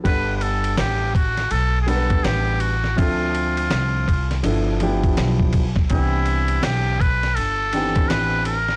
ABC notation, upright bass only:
X:1
M:4/4
L:1/8
Q:"Swing 16ths" 1/4=82
K:G
V:1 name="Upright bass" clef=bass
G,,,2 A,,,2 B,,,2 A,,,2 | D,,2 C,,2 G,,,2 B,,,2 | C,,2 B,,,2 G,,,2 A,,,2 |]